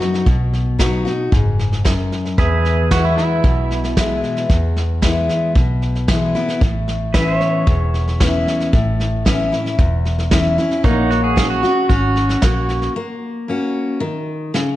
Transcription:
Already playing: F#2 B4 D#5
0.00 D#4 F#4, snare
0.14 snare
0.26 B1 B2, kick, snare
0.53 snare
0.79 F#3 B3 D#4 F#4, kick, snare, hi-hat pedal
1.05 D#4 F#4, snare
1.32 F#1 G#2, kick, snare
1.59 snare
1.72 snare
1.85 F#2, kick, snare, hi-hat pedal
2.12 snare
2.25 snare
2.38 E2 G#4 B4 E5, kick, snare
2.65 snare
2.91 E3 G#3 B3 E4 F#4, kick, snare, hi-hat pedal
3.05 E4
3.17 E4, snare
3.44 B1 B2, kick, snare
3.71 snare
3.84 snare
3.97 E3 G#3 B3 E4, kick, snare, hi-hat pedal
4.23 snare
4.37 snare
4.50 E2, kick, snare
4.76 snare
5.02 E3 G#3 B3 E4, kick, snare, hi-hat pedal
5.29 snare
5.55 B1 B2, kick, snare
5.82 snare
5.95 snare
6.08 E3 G#3 B3 E4, kick, snare, hi-hat pedal
6.35 B3 E4, snare
6.48 snare
6.61 A1 A2, kick, snare
6.88 snare
7.14 E3 B3 C#4 E4 B4 E5, kick, snare, hi-hat pedal
7.39 C#5, snare
7.67 E1 E2, kick, snare
7.94 snare
8.08 snare
8.20 E3 B3 C#4 E4, kick, snare, hi-hat pedal
8.47 snare
8.60 snare
8.73 A1 A2, kick, snare
9.00 snare
9.25 E3 B3 C#4 E4, kick, snare, hi-hat pedal
9.52 C#4 E4, snare
9.66 snare
9.79 E1 E2, kick, snare
10.05 snare
10.18 snare
10.31 E3 B3 C#4 E4, kick, snare, hi-hat pedal
10.58 C#4 E4, snare
10.71 snare
10.84 A#1 A#3 D#4 C#5 F#5, kick, snare
11.11 F#4, snare
11.24 G#4
11.36 A#3 C#4 F#4, kick, snare, hi-hat pedal
11.50 F#4
11.63 C#4 F#4, snare
11.89 G#1 C#4 F#4, kick, snare
12.16 snare
12.29 snare
12.42 A#1 A#3 C#4 F#4, kick, snare, hi-hat pedal
12.69 snare
12.82 snare
12.96 A#3
13.48 A#3 C#4 F#4
14.00 D#3
14.54 C#3, snare

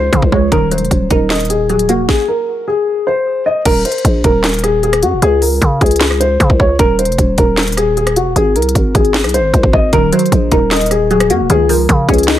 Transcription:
Already playing: C#2 F3 C#4 D#4 C5
0.13 C#3 F3, kick, closed hi-hat
0.22 C2, kick
0.32 C#2 G#3 C#5, kick
0.52 D#1 D#3 A#4, kick, closed hi-hat
0.71 F#3 C5, closed hi-hat, open hi-hat
0.78 F1, closed hi-hat
0.85 closed hi-hat
0.91 D#1, kick, closed hi-hat
1.10 D#1 D#4 A#4, kick, closed hi-hat
1.30 D#5, snare, clap, closed hi-hat
1.35 closed hi-hat
1.40 closed hi-hat
1.45 closed hi-hat
1.50 G#4, closed hi-hat
1.69 F#3 G#4, closed hi-hat
1.79 closed hi-hat
1.89 F1 A#3 F#4, closed hi-hat
1.99 D#1
2.09 G#4, kick, snare
2.28 A#4
2.68 G#4
3.07 C5
3.46 D#5
3.65 D#1 A#4, kick, closed hi-hat, crash
3.85 C5, closed hi-hat, open hi-hat
3.92 closed hi-hat
3.98 closed hi-hat
4.05 A#1, kick, closed hi-hat
4.24 D#1 A#4, kick, closed hi-hat
4.44 snare, clap, closed hi-hat
4.49 closed hi-hat
4.54 closed hi-hat
4.59 closed hi-hat
4.63 G#4, cross-stick, closed hi-hat
4.83 G#4, closed hi-hat
4.93 cross-stick, closed hi-hat
5.03 F#2 F#4, closed hi-hat
5.13 D#1
5.22 C#2 G#4, closed hi-hat
5.42 A#4, open hi-hat
5.62 C#3, kick, closed hi-hat
5.81 C#2 G#4, kick, closed hi-hat
5.86 closed hi-hat
5.91 closed hi-hat
5.96 closed hi-hat
6.01 snare, clap, closed hi-hat
6.11 cross-stick
6.20 C5, closed hi-hat
6.40 C#3, kick, closed hi-hat
6.50 C2, kick
6.60 C#2 C#5, kick
6.79 D#1 A#4, kick, closed hi-hat
6.99 C5, closed hi-hat, open hi-hat
7.05 F1, closed hi-hat
7.12 closed hi-hat
7.18 D#1, kick, closed hi-hat
7.38 D#1 A#4, kick, closed hi-hat
7.57 snare, clap, closed hi-hat
7.63 closed hi-hat
7.67 closed hi-hat
7.72 closed hi-hat
7.77 G#4, cross-stick, closed hi-hat
7.97 G#4, closed hi-hat
8.07 cross-stick, closed hi-hat
8.16 F1 F#4, closed hi-hat
8.26 D#1
8.36 G#1 G#4, closed hi-hat
8.56 C2 A#4, closed hi-hat, open hi-hat
8.62 closed hi-hat
8.69 closed hi-hat
8.75 G#1, kick, closed hi-hat
8.95 G#1 G#4, kick, closed hi-hat
9.05 closed hi-hat
9.14 snare, clap, closed hi-hat
9.19 closed hi-hat
9.24 C2, cross-stick, closed hi-hat
9.29 closed hi-hat
9.34 C5, closed hi-hat
9.39 G#1
9.54 C2, kick, closed hi-hat
9.63 G#1, kick
9.73 G#1 D#5, kick
9.93 D#1 D#3 A#4, kick, closed hi-hat
10.12 F#3 C5, closed hi-hat, open hi-hat
10.19 closed hi-hat
10.26 closed hi-hat
10.32 A#1, kick, closed hi-hat
10.51 D#1 D#4 A#4, kick, closed hi-hat
10.71 D#5, snare, clap, closed hi-hat
10.76 closed hi-hat
10.81 closed hi-hat
10.86 closed hi-hat
10.91 G#4, cross-stick, closed hi-hat
11.11 F#3 G#4, closed hi-hat
11.20 cross-stick, closed hi-hat
11.30 F#2 A#3 F#4, closed hi-hat
11.40 D#1
11.50 C#2 D#3 G#4, closed hi-hat
11.69 F3 A#4, open hi-hat
11.89 C#3, kick, closed hi-hat
12.09 C#2 C#4 G#4, kick, closed hi-hat
12.14 closed hi-hat
12.18 closed hi-hat
12.23 closed hi-hat
12.28 D#4, snare, clap

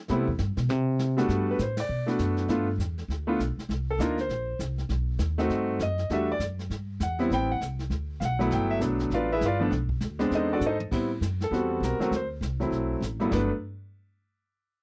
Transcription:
0.08 C3 G3 A3 B3 C4 E4, brush sweep, snare
0.28 E2
0.39 G2, snare
0.57 B2, snare
0.69 C3, brush sweep, snare
0.99 snare
1.17 G3 A3 B3 D4 F#4, snare
1.29 G2, brush sweep, snare
1.51 B4
1.59 A2 C5, snare, hi-hat pedal
1.77 D5, snare, ride
1.89 B2, brush sweep
2.06 A3 B3 D4 F#4, snare
2.19 F#2, snare, hi-hat pedal
2.37 snare
2.48 G2 A3 B3 D4 F4, brush sweep, snare
2.78 E2, snare, hi-hat pedal
2.98 snare
3.08 D2, brush sweep, snare
3.27 A3 B3 D4 F4
3.39 B1, snare, hi-hat pedal
3.57 muted upright bass stroke, snare
3.69 C2, brush sweep, snare
3.90 A4
3.99 D2 A#3 D4 D#4 F4 A#4, snare, hi-hat pedal
4.18 C5, snare
4.29 A#1, brush sweep, snare
4.59 C2, snare, hi-hat pedal
4.78 snare
4.89 B1, brush sweep, snare
5.19 D#2, snare, hi-hat pedal
5.38 A3 C4 D#4 F#4, snare
5.49 G2, brush sweep, snare
5.79 F#2 D#5, snare, hi-hat pedal
5.98 snare
6.10 E2 G3 A3 D4 F#4 E5, brush sweep, snare
6.32 D5
6.39 F#2, snare, hi-hat pedal
6.59 snare
6.70 G2, brush sweep, snare
7.00 E2 F#5, snare, hi-hat pedal
7.19 G3 B3 C4 E4, snare
7.30 A1 G3 B3 C4 E4 G5, brush sweep, snare
7.51 F#5
7.61 C2, snare, hi-hat pedal
7.79 snare
7.90 D2, brush sweep, snare
8.20 B1 F5, snare, hi-hat pedal
8.25 F#5
8.39 F#3 A3 B3 E4, snare
8.51 G1 G5, brush sweep, snare
8.70 E5
8.80 B1 F#3 A3 B3 D4, snare, hi-hat pedal
8.99 snare
9.10 A1 F5, brush sweep, snare
9.15 F4 B4 D5
9.32 E4 G#4 B4 E5
9.41 G1, snare, hi-hat pedal
9.45 F4 B4 D5 F5
9.59 F3 A3 B3 D4
9.71 B1, brush sweep, snare
9.89 kick
10.01 D2, snare, hi-hat pedal
10.19 G#3 B3 C4 D4, snare
10.31 E2, brush sweep, snare
10.35 D#4 A4 C5 D#5
10.53 D4 F#4 A4 D5
10.61 G#2, hi-hat pedal
10.66 D#4 A4 C5 D#5
10.80 mid tom
10.91 A2 G3 B3 C4 E4, brush sweep, kick, snare, crash
11.21 F#2, snare, hi-hat pedal
11.40 A4, snare
11.51 E2 G3 B3 C4 F#4, brush sweep, snare
11.80 B1 A#4, snare, hi-hat pedal
11.99 F#3 A3 C4 F#4, muted upright bass stroke, snare
12.11 D2, brush sweep, snare
12.16 C5
12.41 C2, snare, hi-hat pedal
12.60 F#3 A3 C4 E4, snare
12.71 B1, brush sweep, snare
13.01 A1, snare, hi-hat pedal
13.20 G2 F#3 A3 B3 E4, snare
13.31 G1 F#3 A3 B3 D4 B4, kick, snare, crash

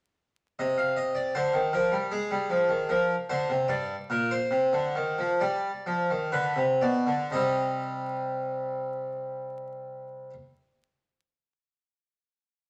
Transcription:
0.59 C3 D#5
0.78 F5
0.96 D#5
1.15 D5
1.35 D3 C5
1.53 D#3
1.73 F3 A#4
1.92 G3
2.11 G#3 G#4
2.31 G3
2.50 F3
2.69 D#3
2.89 F3 A#4
3.29 D3 C5
3.50 C3
3.68 G2 D5
4.10 A#2 A#4
4.31 C5
4.51 C3
4.73 D3
4.95 D#3
5.18 F3
5.40 G3 D5
5.86 F3
6.10 D#3
6.32 D3 B4
6.56 C3
6.81 B2 D5
7.07 D3
7.31 C3 G3 C4 D#5

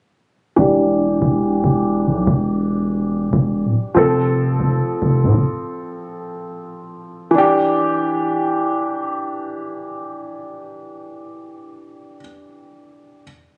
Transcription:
0.56 E1 E3 D4 G4
1.22 E1
1.64 E1
2.06 B1
2.27 E1
3.33 E1
3.65 D1
3.94 F1 F3 C4 A4
4.60 F1
5.02 F1
5.23 A2
5.34 F1
7.31 E3 D4
7.38 G4

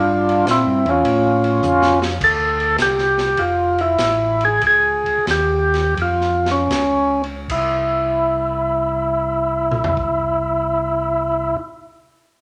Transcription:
Already playing: G2 D4 F4
0.29 ride
0.46 A#2, kick, snare, hi-hat pedal, ride
0.51 C4 E4
0.66 G2
0.86 E2 C#4, ride
0.90 F4
1.04 A2, kick, ride
1.44 ride
1.63 F2, hi-hat pedal, high tom
1.82 snare
2.02 snare
2.21 D2 A4, kick, crash
2.60 ride
2.78 C2 G4, kick, snare, hi-hat pedal, ride
2.98 snare
3.18 snare, ride
3.37 F1 F4, kick, ride
3.78 E4, ride
3.98 A1, kick, snare, hi-hat pedal, ride
4.41 ride
4.45 G#4
4.61 C#2, kick, ride
4.67 G#4
5.06 C#2, ride
5.27 D#2 G4, kick, snare, hi-hat pedal, ride
5.74 snare, ride
5.97 F2, kick, ride
6.02 F4
6.21 snare
6.46 snare, ride
6.51 C#4
6.70 C#2, kick, snare, hi-hat pedal, ride
7.24 ride
7.49 C2 E4, kick, crash
9.71 mid tom
9.84 floor tom
9.97 kick

